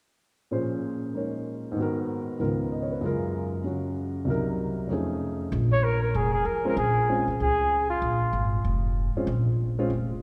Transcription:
0.51 1.76 A#2 soft
0.51 1.76 F3 soft
0.51 1.77 C#4 soft
0.51 1.77 G#4 soft
0.51 1.77 C5 medium
1.14 1.76 G#3 soft
1.14 1.77 D#4 soft
1.14 1.77 A#4 soft
1.14 1.78 C#5 soft
1.72 2.37 G#2 medium
1.72 2.38 D#3 medium
1.77 2.39 B3 soft
1.77 2.41 F#4 soft
1.82 2.39 A#4 medium
2.40 3.02 C#2 soft
2.40 3.02 G#2 soft
2.40 3.02 D#3 soft
2.40 3.02 B3 soft
2.40 3.02 F4 soft
2.40 3.03 A#4 medium
2.72 2.89 D#5 soft
2.82 2.97 C#5 soft
2.92 3.07 B4 soft
3.01 4.27 F#2 medium
3.01 3.63 C#3 medium
3.01 4.28 G#3 medium
3.01 4.28 F4 medium
3.06 4.29 A#4 medium
3.64 4.27 C#3 soft
3.64 4.26 F#3 soft
3.64 4.28 C#4 soft
3.64 4.28 F#4 soft
4.25 4.89 C2 medium
4.25 4.89 C3 soft
4.25 4.90 F#3 medium
4.29 4.90 D#4 soft
4.29 4.91 A#4 medium
4.88 5.51 F2 soft
4.88 5.52 F3 soft
4.88 5.52 A3 soft
4.88 5.53 C#4 soft
4.88 5.53 D#4 soft
4.93 5.54 G#4 medium
5.52 6.11 A#1 medium
5.72 5.85 C#5 loud
5.84 6.01 A#4 medium
6.02 6.17 A#4 medium
6.14 6.44 F1 medium
6.14 6.32 G#4 medium
6.33 6.47 G#4 medium
6.45 6.75 F2 medium
6.45 6.65 A#4 medium
6.65 6.76 G#3 medium
6.65 6.76 C4 medium
6.65 6.76 C#4 soft
6.65 6.76 F4 medium
6.65 6.77 A#4 medium
6.77 7.24 A#1 medium
6.77 7.25 G#4 medium
7.09 7.26 G#3 medium
7.09 7.27 C4 soft
7.09 7.27 C#4 soft
7.09 7.27 F4 medium
7.28 7.39 B1 medium
7.40 8.00 C#2 medium
7.40 7.88 G#4 medium
7.90 8.49 F4 medium
8.02 8.31 A#1 medium
8.33 8.62 G#1 medium
8.64 9.12 F1 medium
9.15 9.27 G#3 medium
9.15 9.27 C4 soft
9.15 9.27 C#4 soft
9.15 9.27 F4 medium
9.15 muted upright bass stroke soft
9.27 9.87 A#1 medium
9.79 9.89 G#3 medium
9.79 9.89 C4 medium
9.79 9.89 C#4 medium
9.79 9.90 F4 medium
9.90 10.22 F1 medium

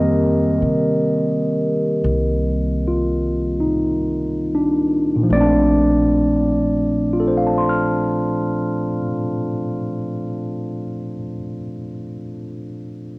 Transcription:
0.00 0.59 F2 medium
0.00 5.29 D#3 soft
0.00 5.29 G3 soft
0.00 5.30 A#3 soft
0.00 5.30 C4 soft
0.00 3.56 G4 medium
0.00 3.56 A#4 medium
0.00 3.54 D#5 medium
0.62 1.99 C3 medium
2.04 5.25 C2 medium
2.88 4.00 F4 soft
3.60 4.98 D#4 soft
4.55 5.40 D4 soft
5.16 8.91 A#2 soft
5.23 8.98 F3 soft
5.29 9.01 A#1 medium
5.29 9.04 A3 soft
5.29 9.04 D5 medium
5.35 9.10 C4 soft
5.41 9.16 D4 medium
7.13 10.84 F4 soft
7.20 10.91 A4 soft
7.27 10.98 C5 soft
7.37 11.08 F5 soft
7.47 11.18 A5 soft
7.58 11.29 C6 soft
7.69 11.40 F6 soft

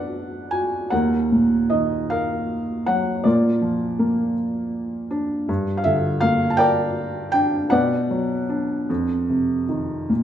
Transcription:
0.00 0.88 B2 medium
0.00 0.49 F#3 soft
0.00 0.87 D4 soft
0.00 0.94 B4 medium
0.00 0.94 D5 medium
0.00 0.90 F#5 medium
0.51 0.90 F#4 soft
0.51 0.92 G#5 medium
0.90 3.22 D#2 medium
0.90 2.07 A#4 medium
0.90 1.73 F#5 medium
1.32 2.84 A#2 soft
1.70 3.22 D#3 soft
1.70 2.11 D#5 medium
2.10 3.22 A#4 medium
2.10 2.90 F5 medium
2.86 3.24 F#3 medium
2.86 3.22 F#5 medium
3.24 5.44 A#2 medium
3.24 4.33 F4 soft
3.24 4.33 A#4 soft
3.24 4.04 D5 medium
3.62 5.07 F3 soft
3.99 5.44 A#3 soft
5.11 5.47 D4 medium
5.49 7.68 G2 medium
5.77 5.85 F5 medium
5.84 7.30 D3 medium
5.84 6.19 E5 medium
6.21 7.68 A#3 medium
6.21 6.49 F5 medium
6.50 6.58 A5 medium
6.57 7.67 A#4 medium
6.57 7.67 D5 medium
6.57 7.30 G5 loud
7.32 7.71 D4 medium
7.32 7.72 G5 medium
7.70 8.86 B2 medium
7.70 9.66 B4 medium
7.70 9.66 D5 medium
7.70 9.65 F#5 medium
8.10 8.87 F#3 soft
8.49 8.88 D4 soft
8.89 10.06 F2 medium
9.30 10.08 C3 soft
9.69 10.08 D#3 soft
10.09 10.23 A#2 medium

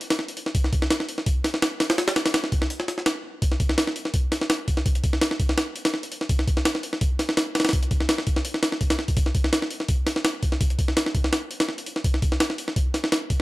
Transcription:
0.01 open hi-hat medium
0.10 snare loud
0.10 open hi-hat medium
0.19 snare soft
0.28 open hi-hat medium
0.37 open hi-hat medium
0.46 snare soft
0.55 kick loud
0.55 open hi-hat medium
0.64 snare soft
0.73 kick loud
0.73 open hi-hat medium
0.82 snare medium
0.90 snare loud
0.90 open hi-hat medium
1.00 snare soft
1.09 open hi-hat medium
1.18 snare soft
1.26 kick loud
1.26 open hi-hat medium
1.44 snare medium
1.44 open hi-hat medium
1.54 snare medium
1.62 snare loud
1.62 open hi-hat medium
1.80 snare loud
1.80 open hi-hat medium
1.90 snare loud
1.90 open hi-hat medium
1.98 snare loud
1.98 open hi-hat medium
2.08 snare loud
2.08 open hi-hat medium
2.16 snare loud
2.16 open hi-hat medium
2.26 snare loud
2.26 open hi-hat medium
2.34 snare loud
2.34 open hi-hat medium
2.44 snare medium
2.52 kick loud
2.52 open hi-hat medium
2.62 snare medium
2.70 open hi-hat medium
2.80 snare soft
2.88 snare soft
2.88 open hi-hat medium
2.98 snare soft
3.06 snare loud
3.06 open hi-hat medium
3.42 kick loud
3.42 open hi-hat medium
3.52 snare soft
3.60 kick loud
3.60 open hi-hat medium
3.69 snare medium
3.78 snare loud
3.78 open hi-hat medium
3.87 snare soft
3.96 open hi-hat medium
4.05 snare soft
4.14 kick loud
4.14 open hi-hat medium
4.32 snare medium
4.32 open hi-hat medium
4.41 snare medium
4.50 snare loud
4.50 open hi-hat medium
4.68 kick medium
4.68 open hi-hat medium
4.77 snare medium
4.86 kick loud
4.86 open hi-hat medium
4.95 closed hi-hat soft
5.04 kick loud
5.04 open hi-hat medium
5.13 snare soft
5.21 snare loud
5.21 open hi-hat medium
5.31 snare medium
5.40 kick loud
5.40 open hi-hat medium
5.49 snare medium
5.58 snare loud
5.58 open hi-hat medium
5.76 open hi-hat medium
5.85 snare loud
5.85 open hi-hat medium
5.94 snare soft
6.03 open hi-hat medium
6.12 open hi-hat medium
6.21 snare soft
6.29 kick loud
6.29 open hi-hat medium
6.39 snare soft
6.47 kick loud
6.47 open hi-hat medium
6.57 snare medium
6.65 snare loud
6.65 open hi-hat medium
6.75 snare soft
6.83 open hi-hat medium
6.93 snare soft
7.01 kick loud
7.01 open hi-hat medium
7.19 snare medium
7.19 open hi-hat medium
7.29 snare medium
7.37 snare loud
7.37 open hi-hat medium
7.55 snare medium
7.55 open hi-hat medium
7.60 snare medium
7.60 open hi-hat medium
7.65 snare medium
7.65 open hi-hat medium
7.69 snare medium
7.69 open hi-hat medium
7.73 kick loud
7.73 open hi-hat medium
7.83 closed hi-hat soft
7.91 kick loud
7.91 open hi-hat medium
8.00 snare soft
8.09 snare loud
8.09 open hi-hat medium
8.18 snare medium
8.27 kick loud
8.27 open hi-hat medium
8.36 snare medium
8.45 open hi-hat medium
8.54 snare soft
8.63 snare loud
8.63 open hi-hat medium
8.72 snare soft
8.81 kick medium
8.81 open hi-hat medium
8.90 snare loud
8.90 open hi-hat medium
8.99 snare soft
9.08 kick medium
9.08 open hi-hat medium
9.17 kick loud
9.17 open hi-hat medium
9.26 snare soft
9.35 kick loud
9.35 open hi-hat medium
9.44 snare medium
9.53 snare loud
9.53 open hi-hat medium
9.62 snare soft
9.70 open hi-hat medium
9.80 snare soft
9.88 kick loud
9.88 open hi-hat medium
10.07 snare medium
10.07 open hi-hat medium
10.16 snare medium
10.25 snare loud
10.25 open hi-hat medium
10.43 kick medium
10.43 open hi-hat medium
10.52 snare soft
10.61 kick loud
10.61 open hi-hat medium
10.70 closed hi-hat soft
10.79 kick loud
10.79 open hi-hat medium
10.88 snare soft
10.97 snare loud
10.97 open hi-hat medium
11.06 snare medium
11.15 kick medium
11.15 open hi-hat medium
11.24 snare medium
11.33 snare loud
11.33 open hi-hat medium
11.51 open hi-hat medium
11.60 snare loud
11.60 open hi-hat medium
11.69 snare soft
11.78 open hi-hat medium
11.86 open hi-hat medium
11.96 snare soft
12.04 kick loud
12.04 open hi-hat medium
12.14 snare soft
12.22 kick loud
12.22 open hi-hat medium
12.32 snare medium
12.40 snare loud
12.40 open hi-hat medium
12.50 snare soft
12.58 open hi-hat medium
12.68 snare soft
12.76 kick loud
12.76 open hi-hat medium
12.94 snare medium
12.94 open hi-hat medium
13.04 snare medium
13.12 snare loud
13.12 open hi-hat medium
13.30 kick medium
13.30 open hi-hat medium

